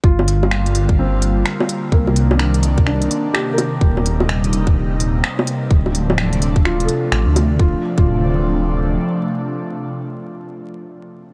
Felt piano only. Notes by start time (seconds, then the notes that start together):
0.04 F4
0.99 C4
1.93 A#3
2.87 D4
3.34 G4
3.53 A#4
6.65 F4
6.85 A4
7.60 F4
7.98 F4